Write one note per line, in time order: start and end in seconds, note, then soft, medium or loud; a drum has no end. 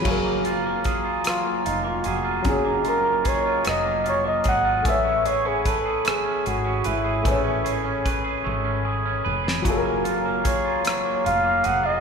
0.00 2.39 F#3 medium
0.00 0.45 C#4 medium
0.00 0.28 G#4 medium
0.00 0.13 B4 medium
0.05 1.61 F#1 medium
0.05 1.24 F#3 medium
0.05 2.42 G#4 medium
0.05 2.41 F5 medium
0.05 2.43 F5 medium
0.05 12.00 G#5 soft
0.05 4.81 A#5 medium
0.05 kick medium
0.05 crash medium
0.10 2.44 A#4 medium
0.25 0.64 A#3 medium
0.45 1.03 F4 soft
0.45 closed hi-hat soft
0.66 1.43 A#3 medium
0.84 2.05 G#4 medium
0.84 kick medium
0.84 closed hi-hat soft
1.04 1.64 F4 soft
1.24 2.44 F#3 medium
1.24 1.68 F4 medium
1.24 cross-stick medium
1.24 closed hi-hat medium
1.45 1.83 A#3 medium
1.65 2.02 F1 medium
1.65 1.89 D#4 medium
1.65 2.23 F4 soft
1.65 closed hi-hat medium
1.84 2.63 A#3 medium
1.84 2.09 F4 medium
2.04 2.42 F1 medium
2.04 2.46 F#4 medium
2.04 3.24 G#4 medium
2.04 closed hi-hat soft
2.24 2.84 F4 medium
2.42 3.61 F#1 medium
2.42 4.80 F#3 medium
2.42 3.63 F#3 medium
2.42 4.81 C#4 medium
2.42 4.83 D#5 soft
2.42 kick medium
2.42 closed hi-hat medium
2.48 2.84 G#4 medium
2.48 4.82 G#4 medium
2.48 4.84 C#5 medium
2.65 3.04 A#3 soft
2.85 3.44 F4 medium
2.85 3.29 A#4 medium
2.85 closed hi-hat soft
3.05 3.83 A#3 medium
3.24 4.44 G#4 medium
3.24 3.66 C#5 medium
3.24 kick medium
3.24 closed hi-hat medium
3.45 4.03 F4 medium
3.65 4.42 F1 medium
3.65 4.93 F#3 medium
3.65 cross-stick medium
3.65 closed hi-hat medium
3.69 4.04 D#5 medium
3.85 4.23 A#3 medium
4.04 4.64 F4 medium
4.04 closed hi-hat soft
4.08 4.25 C#5 medium
4.24 4.85 A#3 medium
4.24 4.45 D#5 medium
4.44 4.82 G#1 medium
4.44 5.25 G#4 medium
4.44 kick medium
4.44 closed hi-hat soft
4.48 4.84 F#5 loud
4.65 4.93 F4 medium
4.82 6.41 A1 medium
4.82 7.20 A3 medium
4.82 6.04 A3 medium
4.82 9.61 C#5 soft
4.82 7.21 G#5 medium
4.82 9.61 B5 medium
4.82 kick loud
4.82 closed hi-hat medium
4.88 7.23 B4 medium
4.88 7.24 C#5 medium
4.88 5.28 E5 medium
5.05 5.45 C#4 medium
5.26 5.85 G#4 medium
5.26 5.48 C#5 medium
5.26 closed hi-hat soft
5.45 6.25 C#4 medium
5.45 5.69 G#4 medium
5.65 6.06 A4 medium
5.65 6.84 B4 medium
5.65 kick medium
5.65 closed hi-hat medium
5.86 6.45 G#4 medium
6.05 7.23 A3 medium
6.05 6.49 G#4 medium
6.05 cross-stick loud
6.05 closed hi-hat medium
6.25 6.64 C#4 medium
6.45 6.82 G#1 medium
6.45 6.88 F#4 medium
6.45 7.04 G#4 medium
6.45 closed hi-hat medium
6.64 7.44 C#4 medium
6.84 7.22 G#1 medium
6.84 7.29 E4 medium
6.84 8.04 B4 medium
6.84 closed hi-hat soft
7.04 7.64 G#4 medium
7.23 8.42 A1 medium
7.23 9.60 A3 medium
7.23 8.43 A3 medium
7.23 9.61 G#4 medium
7.23 kick loud
7.23 closed hi-hat medium
7.27 9.26 C#4 medium
7.27 9.62 B4 medium
7.27 9.64 C#5 medium
7.44 7.84 C#4 medium
7.64 8.24 G#4 medium
7.64 closed hi-hat soft
7.84 8.64 C#4 medium
8.05 9.23 B4 medium
8.05 kick medium
8.05 closed hi-hat medium
8.24 8.85 G#4 medium
8.44 9.22 G#1 medium
8.44 9.73 A3 medium
8.64 9.05 C#4 medium
8.85 9.44 G#4 medium
9.05 10.04 C#4 medium
9.25 9.62 F1 medium
9.25 9.73 B4 medium
9.44 9.87 G#4 soft
9.44 snare medium
9.62 11.21 F#1 medium
9.62 12.00 F#3 medium
9.62 10.84 F#3 medium
9.62 12.00 F4 medium
9.62 12.00 A#5 medium
9.62 kick medium
9.62 closed hi-hat medium
9.66 12.00 G#4 medium
9.66 12.00 F5 medium
9.70 9.74 A4 medium
9.77 12.00 A#4 medium
9.84 10.24 A#3 medium
10.04 10.64 F4 medium
10.04 closed hi-hat soft
10.25 11.04 A#3 medium
10.44 11.64 G#4 medium
10.44 10.83 C#5 medium
10.44 kick medium
10.44 closed hi-hat medium
10.65 11.23 F4 medium
10.85 12.00 F#3 medium
10.85 11.23 C#5 medium
10.85 cross-stick loud
10.85 closed hi-hat medium
11.05 11.43 A#3 medium
11.24 11.62 F1 medium
11.24 11.82 F4 medium
11.24 11.67 F5 loud
11.24 closed hi-hat medium
11.44 12.00 A#3 medium
11.64 12.00 F1 medium
11.64 12.00 G#4 medium
11.64 11.87 F#5 loud
11.64 closed hi-hat soft
11.83 12.00 F4 medium
11.83 12.00 D#5 loud